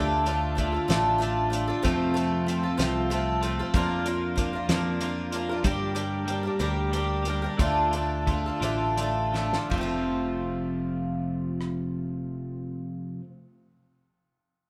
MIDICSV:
0, 0, Header, 1, 5, 480
1, 0, Start_track
1, 0, Key_signature, -1, "major"
1, 0, Tempo, 634249
1, 1392, Time_signature, 6, 3, 24, 8
1, 4756, Tempo, 664452
1, 6196, Tempo, 721154
1, 7156, Tempo, 752823
1, 10331, End_track
2, 0, Start_track
2, 0, Title_t, "Twelve-string acoustic guitar"
2, 0, Program_c, 0, 25
2, 0, Note_on_c, 0, 50, 84
2, 0, Note_on_c, 0, 57, 88
2, 0, Note_on_c, 0, 62, 100
2, 0, Note_on_c, 0, 65, 92
2, 0, Note_on_c, 0, 69, 108
2, 185, Note_off_c, 0, 57, 0
2, 194, Note_off_c, 0, 62, 0
2, 194, Note_on_c, 0, 57, 66
2, 200, Note_off_c, 0, 50, 0
2, 203, Note_on_c, 0, 62, 68
2, 204, Note_off_c, 0, 65, 0
2, 206, Note_off_c, 0, 69, 0
2, 213, Note_on_c, 0, 65, 68
2, 217, Note_on_c, 0, 69, 66
2, 409, Note_off_c, 0, 57, 0
2, 418, Note_off_c, 0, 62, 0
2, 418, Note_on_c, 0, 57, 58
2, 427, Note_off_c, 0, 65, 0
2, 427, Note_on_c, 0, 62, 62
2, 433, Note_off_c, 0, 69, 0
2, 436, Note_on_c, 0, 65, 58
2, 442, Note_on_c, 0, 69, 60
2, 538, Note_off_c, 0, 69, 0
2, 546, Note_off_c, 0, 57, 0
2, 547, Note_on_c, 0, 69, 44
2, 550, Note_off_c, 0, 62, 0
2, 555, Note_off_c, 0, 65, 0
2, 563, Note_on_c, 0, 65, 45
2, 579, Note_on_c, 0, 62, 39
2, 665, Note_on_c, 0, 50, 78
2, 667, Note_off_c, 0, 62, 0
2, 669, Note_on_c, 0, 57, 81
2, 670, Note_off_c, 0, 69, 0
2, 672, Note_off_c, 0, 65, 0
2, 676, Note_on_c, 0, 62, 88
2, 681, Note_on_c, 0, 65, 92
2, 683, Note_on_c, 0, 69, 83
2, 886, Note_off_c, 0, 57, 0
2, 892, Note_off_c, 0, 62, 0
2, 895, Note_on_c, 0, 57, 70
2, 898, Note_off_c, 0, 65, 0
2, 901, Note_on_c, 0, 62, 62
2, 906, Note_off_c, 0, 69, 0
2, 907, Note_on_c, 0, 65, 72
2, 909, Note_off_c, 0, 50, 0
2, 915, Note_on_c, 0, 69, 74
2, 1126, Note_off_c, 0, 57, 0
2, 1136, Note_on_c, 0, 57, 66
2, 1138, Note_off_c, 0, 62, 0
2, 1143, Note_off_c, 0, 65, 0
2, 1147, Note_on_c, 0, 62, 59
2, 1153, Note_off_c, 0, 69, 0
2, 1153, Note_on_c, 0, 65, 70
2, 1163, Note_on_c, 0, 69, 59
2, 1259, Note_off_c, 0, 69, 0
2, 1264, Note_off_c, 0, 57, 0
2, 1268, Note_on_c, 0, 69, 64
2, 1269, Note_off_c, 0, 62, 0
2, 1272, Note_off_c, 0, 65, 0
2, 1283, Note_on_c, 0, 65, 62
2, 1287, Note_on_c, 0, 62, 51
2, 1381, Note_on_c, 0, 53, 86
2, 1383, Note_off_c, 0, 65, 0
2, 1385, Note_on_c, 0, 57, 87
2, 1390, Note_off_c, 0, 62, 0
2, 1390, Note_off_c, 0, 69, 0
2, 1392, Note_on_c, 0, 65, 79
2, 1393, Note_on_c, 0, 60, 88
2, 1401, Note_on_c, 0, 69, 95
2, 1610, Note_off_c, 0, 57, 0
2, 1618, Note_off_c, 0, 60, 0
2, 1619, Note_on_c, 0, 57, 65
2, 1626, Note_off_c, 0, 53, 0
2, 1627, Note_off_c, 0, 65, 0
2, 1627, Note_on_c, 0, 60, 64
2, 1634, Note_off_c, 0, 69, 0
2, 1636, Note_on_c, 0, 65, 69
2, 1643, Note_on_c, 0, 69, 73
2, 1856, Note_off_c, 0, 57, 0
2, 1865, Note_on_c, 0, 57, 61
2, 1869, Note_off_c, 0, 60, 0
2, 1873, Note_off_c, 0, 65, 0
2, 1877, Note_off_c, 0, 69, 0
2, 1882, Note_on_c, 0, 60, 58
2, 1888, Note_on_c, 0, 65, 52
2, 1893, Note_on_c, 0, 69, 60
2, 1983, Note_off_c, 0, 69, 0
2, 1986, Note_off_c, 0, 65, 0
2, 1988, Note_off_c, 0, 57, 0
2, 1992, Note_on_c, 0, 69, 53
2, 1995, Note_on_c, 0, 65, 47
2, 1996, Note_off_c, 0, 60, 0
2, 2010, Note_on_c, 0, 60, 37
2, 2099, Note_off_c, 0, 60, 0
2, 2100, Note_on_c, 0, 53, 79
2, 2103, Note_on_c, 0, 57, 69
2, 2104, Note_off_c, 0, 69, 0
2, 2107, Note_off_c, 0, 65, 0
2, 2108, Note_on_c, 0, 60, 82
2, 2113, Note_on_c, 0, 69, 88
2, 2116, Note_on_c, 0, 65, 83
2, 2337, Note_off_c, 0, 57, 0
2, 2345, Note_off_c, 0, 53, 0
2, 2346, Note_on_c, 0, 57, 67
2, 2347, Note_off_c, 0, 60, 0
2, 2351, Note_off_c, 0, 65, 0
2, 2352, Note_off_c, 0, 69, 0
2, 2356, Note_on_c, 0, 60, 62
2, 2360, Note_on_c, 0, 65, 69
2, 2366, Note_on_c, 0, 69, 82
2, 2583, Note_off_c, 0, 57, 0
2, 2590, Note_off_c, 0, 60, 0
2, 2592, Note_on_c, 0, 57, 66
2, 2595, Note_off_c, 0, 65, 0
2, 2598, Note_off_c, 0, 69, 0
2, 2599, Note_on_c, 0, 60, 71
2, 2608, Note_on_c, 0, 65, 62
2, 2614, Note_on_c, 0, 69, 66
2, 2710, Note_off_c, 0, 69, 0
2, 2711, Note_off_c, 0, 57, 0
2, 2715, Note_off_c, 0, 60, 0
2, 2717, Note_off_c, 0, 65, 0
2, 2719, Note_on_c, 0, 69, 61
2, 2726, Note_on_c, 0, 65, 53
2, 2741, Note_on_c, 0, 60, 48
2, 2835, Note_off_c, 0, 69, 0
2, 2838, Note_off_c, 0, 65, 0
2, 2838, Note_on_c, 0, 53, 79
2, 2844, Note_on_c, 0, 58, 87
2, 2845, Note_off_c, 0, 60, 0
2, 2848, Note_on_c, 0, 62, 93
2, 2854, Note_on_c, 0, 65, 91
2, 2857, Note_on_c, 0, 70, 89
2, 3061, Note_off_c, 0, 58, 0
2, 3070, Note_on_c, 0, 58, 62
2, 3073, Note_off_c, 0, 62, 0
2, 3074, Note_off_c, 0, 53, 0
2, 3079, Note_off_c, 0, 70, 0
2, 3082, Note_off_c, 0, 65, 0
2, 3082, Note_on_c, 0, 62, 64
2, 3089, Note_on_c, 0, 70, 71
2, 3090, Note_on_c, 0, 65, 63
2, 3288, Note_off_c, 0, 58, 0
2, 3297, Note_on_c, 0, 58, 64
2, 3300, Note_off_c, 0, 62, 0
2, 3306, Note_off_c, 0, 65, 0
2, 3309, Note_on_c, 0, 62, 53
2, 3314, Note_off_c, 0, 70, 0
2, 3315, Note_on_c, 0, 65, 59
2, 3323, Note_on_c, 0, 70, 70
2, 3420, Note_off_c, 0, 70, 0
2, 3424, Note_off_c, 0, 58, 0
2, 3429, Note_on_c, 0, 70, 54
2, 3430, Note_off_c, 0, 62, 0
2, 3433, Note_off_c, 0, 65, 0
2, 3446, Note_on_c, 0, 65, 50
2, 3454, Note_on_c, 0, 62, 45
2, 3550, Note_off_c, 0, 70, 0
2, 3556, Note_off_c, 0, 62, 0
2, 3557, Note_on_c, 0, 53, 71
2, 3559, Note_off_c, 0, 65, 0
2, 3562, Note_on_c, 0, 58, 86
2, 3565, Note_on_c, 0, 62, 76
2, 3572, Note_on_c, 0, 65, 82
2, 3572, Note_on_c, 0, 70, 82
2, 3781, Note_off_c, 0, 58, 0
2, 3786, Note_off_c, 0, 62, 0
2, 3790, Note_on_c, 0, 58, 67
2, 3795, Note_off_c, 0, 53, 0
2, 3795, Note_off_c, 0, 65, 0
2, 3795, Note_on_c, 0, 62, 68
2, 3802, Note_off_c, 0, 70, 0
2, 3804, Note_on_c, 0, 65, 68
2, 3811, Note_on_c, 0, 70, 80
2, 4026, Note_off_c, 0, 58, 0
2, 4034, Note_off_c, 0, 62, 0
2, 4035, Note_on_c, 0, 58, 66
2, 4038, Note_off_c, 0, 65, 0
2, 4042, Note_off_c, 0, 70, 0
2, 4045, Note_on_c, 0, 62, 63
2, 4054, Note_on_c, 0, 65, 66
2, 4063, Note_on_c, 0, 70, 65
2, 4148, Note_off_c, 0, 70, 0
2, 4154, Note_off_c, 0, 58, 0
2, 4157, Note_on_c, 0, 70, 61
2, 4159, Note_off_c, 0, 62, 0
2, 4163, Note_off_c, 0, 65, 0
2, 4173, Note_on_c, 0, 65, 59
2, 4182, Note_on_c, 0, 62, 49
2, 4269, Note_on_c, 0, 55, 77
2, 4272, Note_off_c, 0, 62, 0
2, 4274, Note_off_c, 0, 65, 0
2, 4275, Note_off_c, 0, 70, 0
2, 4277, Note_on_c, 0, 67, 85
2, 4281, Note_on_c, 0, 62, 89
2, 4288, Note_on_c, 0, 70, 101
2, 4493, Note_off_c, 0, 55, 0
2, 4498, Note_off_c, 0, 62, 0
2, 4502, Note_on_c, 0, 55, 62
2, 4507, Note_on_c, 0, 62, 60
2, 4509, Note_off_c, 0, 67, 0
2, 4518, Note_on_c, 0, 67, 67
2, 4520, Note_off_c, 0, 70, 0
2, 4529, Note_on_c, 0, 70, 71
2, 4742, Note_off_c, 0, 55, 0
2, 4752, Note_on_c, 0, 55, 57
2, 4754, Note_off_c, 0, 62, 0
2, 4759, Note_off_c, 0, 67, 0
2, 4764, Note_off_c, 0, 70, 0
2, 4766, Note_on_c, 0, 62, 65
2, 4767, Note_on_c, 0, 67, 63
2, 4782, Note_on_c, 0, 70, 61
2, 4854, Note_off_c, 0, 70, 0
2, 4862, Note_on_c, 0, 70, 60
2, 4870, Note_off_c, 0, 67, 0
2, 4871, Note_off_c, 0, 55, 0
2, 4878, Note_off_c, 0, 62, 0
2, 4879, Note_on_c, 0, 67, 44
2, 4892, Note_on_c, 0, 62, 43
2, 4979, Note_on_c, 0, 55, 80
2, 4981, Note_off_c, 0, 62, 0
2, 4981, Note_off_c, 0, 67, 0
2, 4982, Note_off_c, 0, 70, 0
2, 4990, Note_on_c, 0, 62, 70
2, 4990, Note_on_c, 0, 67, 75
2, 4990, Note_on_c, 0, 70, 95
2, 5215, Note_off_c, 0, 55, 0
2, 5219, Note_off_c, 0, 62, 0
2, 5224, Note_on_c, 0, 55, 66
2, 5225, Note_off_c, 0, 67, 0
2, 5226, Note_off_c, 0, 70, 0
2, 5227, Note_on_c, 0, 62, 78
2, 5234, Note_on_c, 0, 67, 73
2, 5248, Note_on_c, 0, 70, 75
2, 5456, Note_off_c, 0, 55, 0
2, 5464, Note_off_c, 0, 62, 0
2, 5464, Note_on_c, 0, 55, 57
2, 5466, Note_off_c, 0, 67, 0
2, 5473, Note_on_c, 0, 62, 62
2, 5475, Note_off_c, 0, 70, 0
2, 5475, Note_on_c, 0, 67, 68
2, 5486, Note_on_c, 0, 70, 66
2, 5569, Note_off_c, 0, 70, 0
2, 5577, Note_on_c, 0, 70, 61
2, 5583, Note_off_c, 0, 67, 0
2, 5584, Note_off_c, 0, 55, 0
2, 5589, Note_off_c, 0, 62, 0
2, 5592, Note_on_c, 0, 67, 56
2, 5603, Note_on_c, 0, 62, 48
2, 5696, Note_off_c, 0, 62, 0
2, 5700, Note_on_c, 0, 50, 78
2, 5701, Note_off_c, 0, 70, 0
2, 5705, Note_on_c, 0, 57, 90
2, 5705, Note_on_c, 0, 62, 97
2, 5709, Note_off_c, 0, 67, 0
2, 5713, Note_on_c, 0, 65, 94
2, 5720, Note_on_c, 0, 69, 93
2, 5942, Note_off_c, 0, 57, 0
2, 5946, Note_off_c, 0, 50, 0
2, 5949, Note_off_c, 0, 62, 0
2, 5951, Note_on_c, 0, 57, 59
2, 5953, Note_off_c, 0, 65, 0
2, 5957, Note_off_c, 0, 69, 0
2, 5957, Note_on_c, 0, 62, 61
2, 5966, Note_on_c, 0, 65, 56
2, 5974, Note_on_c, 0, 69, 69
2, 6194, Note_off_c, 0, 57, 0
2, 6201, Note_off_c, 0, 62, 0
2, 6202, Note_on_c, 0, 57, 51
2, 6205, Note_off_c, 0, 65, 0
2, 6209, Note_off_c, 0, 69, 0
2, 6211, Note_on_c, 0, 62, 56
2, 6219, Note_on_c, 0, 65, 57
2, 6226, Note_on_c, 0, 69, 55
2, 6310, Note_off_c, 0, 69, 0
2, 6315, Note_off_c, 0, 57, 0
2, 6318, Note_on_c, 0, 69, 51
2, 6320, Note_off_c, 0, 62, 0
2, 6320, Note_off_c, 0, 65, 0
2, 6328, Note_on_c, 0, 65, 46
2, 6340, Note_on_c, 0, 62, 41
2, 6426, Note_off_c, 0, 62, 0
2, 6426, Note_off_c, 0, 65, 0
2, 6429, Note_on_c, 0, 50, 70
2, 6429, Note_on_c, 0, 57, 79
2, 6432, Note_off_c, 0, 69, 0
2, 6434, Note_on_c, 0, 62, 74
2, 6434, Note_on_c, 0, 65, 86
2, 6443, Note_on_c, 0, 69, 83
2, 6663, Note_off_c, 0, 57, 0
2, 6667, Note_off_c, 0, 50, 0
2, 6667, Note_off_c, 0, 62, 0
2, 6669, Note_off_c, 0, 65, 0
2, 6671, Note_on_c, 0, 57, 70
2, 6673, Note_off_c, 0, 69, 0
2, 6675, Note_on_c, 0, 62, 71
2, 6679, Note_on_c, 0, 65, 71
2, 6693, Note_on_c, 0, 69, 77
2, 6895, Note_off_c, 0, 57, 0
2, 6903, Note_on_c, 0, 57, 56
2, 6907, Note_off_c, 0, 62, 0
2, 6915, Note_off_c, 0, 65, 0
2, 6915, Note_on_c, 0, 62, 57
2, 6922, Note_off_c, 0, 69, 0
2, 6922, Note_on_c, 0, 65, 58
2, 6929, Note_on_c, 0, 69, 64
2, 7024, Note_off_c, 0, 69, 0
2, 7029, Note_off_c, 0, 57, 0
2, 7032, Note_on_c, 0, 69, 56
2, 7034, Note_off_c, 0, 65, 0
2, 7035, Note_off_c, 0, 62, 0
2, 7042, Note_on_c, 0, 65, 52
2, 7051, Note_on_c, 0, 62, 51
2, 7141, Note_on_c, 0, 53, 75
2, 7156, Note_off_c, 0, 69, 0
2, 7161, Note_off_c, 0, 65, 0
2, 7165, Note_off_c, 0, 62, 0
2, 7167, Note_on_c, 0, 57, 72
2, 7193, Note_on_c, 0, 60, 72
2, 7214, Note_on_c, 0, 65, 76
2, 7224, Note_on_c, 0, 69, 80
2, 9373, Note_off_c, 0, 53, 0
2, 9398, Note_off_c, 0, 57, 0
2, 9424, Note_off_c, 0, 60, 0
2, 9446, Note_off_c, 0, 65, 0
2, 9456, Note_off_c, 0, 69, 0
2, 10331, End_track
3, 0, Start_track
3, 0, Title_t, "Clean electric guitar"
3, 0, Program_c, 1, 27
3, 439, Note_on_c, 1, 50, 68
3, 911, Note_off_c, 1, 50, 0
3, 921, Note_on_c, 1, 50, 63
3, 927, Note_on_c, 1, 57, 54
3, 1165, Note_off_c, 1, 57, 0
3, 1174, Note_on_c, 1, 57, 50
3, 1381, Note_off_c, 1, 50, 0
3, 1387, Note_on_c, 1, 41, 82
3, 1388, Note_off_c, 1, 57, 0
3, 1394, Note_on_c, 1, 48, 82
3, 1649, Note_on_c, 1, 53, 55
3, 1861, Note_off_c, 1, 53, 0
3, 1864, Note_on_c, 1, 53, 63
3, 1872, Note_off_c, 1, 48, 0
3, 2111, Note_off_c, 1, 53, 0
3, 2341, Note_on_c, 1, 53, 58
3, 2594, Note_off_c, 1, 53, 0
3, 2604, Note_on_c, 1, 53, 49
3, 2817, Note_off_c, 1, 53, 0
3, 3299, Note_on_c, 1, 53, 61
3, 3536, Note_on_c, 1, 65, 67
3, 3775, Note_off_c, 1, 53, 0
3, 3784, Note_on_c, 1, 53, 56
3, 3792, Note_off_c, 1, 65, 0
3, 4023, Note_on_c, 1, 65, 58
3, 4036, Note_off_c, 1, 41, 0
3, 4254, Note_off_c, 1, 65, 0
3, 4255, Note_off_c, 1, 53, 0
3, 4259, Note_on_c, 1, 43, 81
3, 4265, Note_on_c, 1, 50, 78
3, 4272, Note_on_c, 1, 58, 86
3, 4503, Note_off_c, 1, 58, 0
3, 4512, Note_on_c, 1, 58, 59
3, 4736, Note_off_c, 1, 58, 0
3, 4745, Note_on_c, 1, 58, 80
3, 4750, Note_off_c, 1, 43, 0
3, 4753, Note_off_c, 1, 50, 0
3, 4979, Note_off_c, 1, 58, 0
3, 4988, Note_on_c, 1, 58, 66
3, 5205, Note_off_c, 1, 58, 0
3, 5213, Note_on_c, 1, 58, 62
3, 5437, Note_on_c, 1, 67, 67
3, 5444, Note_off_c, 1, 58, 0
3, 5453, Note_on_c, 1, 58, 53
3, 5677, Note_off_c, 1, 67, 0
3, 5685, Note_off_c, 1, 58, 0
3, 5932, Note_on_c, 1, 65, 65
3, 6180, Note_on_c, 1, 50, 71
3, 6188, Note_off_c, 1, 65, 0
3, 6642, Note_off_c, 1, 50, 0
3, 6650, Note_on_c, 1, 50, 53
3, 6894, Note_on_c, 1, 65, 60
3, 7133, Note_off_c, 1, 50, 0
3, 7134, Note_off_c, 1, 65, 0
3, 7139, Note_on_c, 1, 41, 75
3, 7146, Note_on_c, 1, 48, 82
3, 7163, Note_on_c, 1, 60, 91
3, 7166, Note_on_c, 1, 65, 89
3, 9371, Note_off_c, 1, 41, 0
3, 9378, Note_off_c, 1, 48, 0
3, 9394, Note_off_c, 1, 60, 0
3, 9398, Note_off_c, 1, 65, 0
3, 10331, End_track
4, 0, Start_track
4, 0, Title_t, "Picked electric bass"
4, 0, Program_c, 2, 34
4, 0, Note_on_c, 2, 38, 89
4, 581, Note_off_c, 2, 38, 0
4, 675, Note_on_c, 2, 33, 81
4, 1296, Note_off_c, 2, 33, 0
4, 1394, Note_on_c, 2, 41, 86
4, 2015, Note_off_c, 2, 41, 0
4, 2112, Note_on_c, 2, 36, 89
4, 2734, Note_off_c, 2, 36, 0
4, 2831, Note_on_c, 2, 41, 82
4, 3454, Note_off_c, 2, 41, 0
4, 3548, Note_on_c, 2, 41, 74
4, 4174, Note_off_c, 2, 41, 0
4, 4269, Note_on_c, 2, 43, 86
4, 4895, Note_off_c, 2, 43, 0
4, 4983, Note_on_c, 2, 38, 81
4, 5605, Note_off_c, 2, 38, 0
4, 5700, Note_on_c, 2, 38, 79
4, 6335, Note_off_c, 2, 38, 0
4, 6419, Note_on_c, 2, 33, 77
4, 7053, Note_off_c, 2, 33, 0
4, 7149, Note_on_c, 2, 29, 72
4, 9324, Note_off_c, 2, 29, 0
4, 10331, End_track
5, 0, Start_track
5, 0, Title_t, "Drums"
5, 199, Note_on_c, 9, 42, 58
5, 275, Note_off_c, 9, 42, 0
5, 440, Note_on_c, 9, 42, 55
5, 443, Note_on_c, 9, 36, 66
5, 515, Note_off_c, 9, 42, 0
5, 518, Note_off_c, 9, 36, 0
5, 681, Note_on_c, 9, 42, 77
5, 684, Note_on_c, 9, 38, 93
5, 756, Note_off_c, 9, 42, 0
5, 759, Note_off_c, 9, 38, 0
5, 922, Note_on_c, 9, 42, 52
5, 998, Note_off_c, 9, 42, 0
5, 1159, Note_on_c, 9, 42, 58
5, 1234, Note_off_c, 9, 42, 0
5, 1398, Note_on_c, 9, 36, 91
5, 1398, Note_on_c, 9, 42, 70
5, 1473, Note_off_c, 9, 42, 0
5, 1474, Note_off_c, 9, 36, 0
5, 1640, Note_on_c, 9, 42, 49
5, 1716, Note_off_c, 9, 42, 0
5, 1879, Note_on_c, 9, 42, 52
5, 1955, Note_off_c, 9, 42, 0
5, 2115, Note_on_c, 9, 42, 78
5, 2118, Note_on_c, 9, 38, 83
5, 2191, Note_off_c, 9, 42, 0
5, 2194, Note_off_c, 9, 38, 0
5, 2355, Note_on_c, 9, 42, 52
5, 2431, Note_off_c, 9, 42, 0
5, 2593, Note_on_c, 9, 42, 60
5, 2669, Note_off_c, 9, 42, 0
5, 2828, Note_on_c, 9, 42, 71
5, 2832, Note_on_c, 9, 36, 91
5, 2904, Note_off_c, 9, 42, 0
5, 2908, Note_off_c, 9, 36, 0
5, 3071, Note_on_c, 9, 42, 56
5, 3146, Note_off_c, 9, 42, 0
5, 3312, Note_on_c, 9, 36, 69
5, 3312, Note_on_c, 9, 42, 61
5, 3388, Note_off_c, 9, 36, 0
5, 3388, Note_off_c, 9, 42, 0
5, 3549, Note_on_c, 9, 42, 70
5, 3552, Note_on_c, 9, 38, 85
5, 3625, Note_off_c, 9, 42, 0
5, 3628, Note_off_c, 9, 38, 0
5, 3789, Note_on_c, 9, 42, 60
5, 3865, Note_off_c, 9, 42, 0
5, 4030, Note_on_c, 9, 42, 61
5, 4105, Note_off_c, 9, 42, 0
5, 4270, Note_on_c, 9, 42, 68
5, 4273, Note_on_c, 9, 36, 89
5, 4346, Note_off_c, 9, 42, 0
5, 4348, Note_off_c, 9, 36, 0
5, 4510, Note_on_c, 9, 42, 58
5, 4585, Note_off_c, 9, 42, 0
5, 4751, Note_on_c, 9, 42, 51
5, 4824, Note_off_c, 9, 42, 0
5, 4983, Note_on_c, 9, 42, 59
5, 5055, Note_off_c, 9, 42, 0
5, 5224, Note_on_c, 9, 42, 51
5, 5296, Note_off_c, 9, 42, 0
5, 5455, Note_on_c, 9, 42, 57
5, 5528, Note_off_c, 9, 42, 0
5, 5702, Note_on_c, 9, 36, 98
5, 5703, Note_on_c, 9, 42, 70
5, 5774, Note_off_c, 9, 36, 0
5, 5775, Note_off_c, 9, 42, 0
5, 5944, Note_on_c, 9, 42, 53
5, 6016, Note_off_c, 9, 42, 0
5, 6193, Note_on_c, 9, 36, 68
5, 6193, Note_on_c, 9, 42, 45
5, 6259, Note_off_c, 9, 36, 0
5, 6259, Note_off_c, 9, 42, 0
5, 6426, Note_on_c, 9, 42, 67
5, 6492, Note_off_c, 9, 42, 0
5, 6660, Note_on_c, 9, 42, 54
5, 6727, Note_off_c, 9, 42, 0
5, 6907, Note_on_c, 9, 38, 49
5, 6973, Note_off_c, 9, 38, 0
5, 7030, Note_on_c, 9, 38, 60
5, 7097, Note_off_c, 9, 38, 0
5, 7152, Note_on_c, 9, 51, 75
5, 7153, Note_on_c, 9, 36, 60
5, 7216, Note_off_c, 9, 36, 0
5, 7216, Note_off_c, 9, 51, 0
5, 8359, Note_on_c, 9, 37, 52
5, 8423, Note_off_c, 9, 37, 0
5, 10331, End_track
0, 0, End_of_file